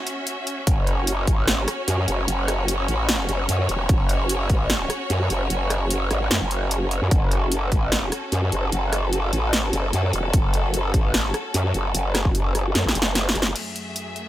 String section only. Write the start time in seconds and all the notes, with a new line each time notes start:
Already playing: C#4 F#4 E5
0.67 C#5
7.11 A4
13.56 F#2 F#3 A3 G#4 E5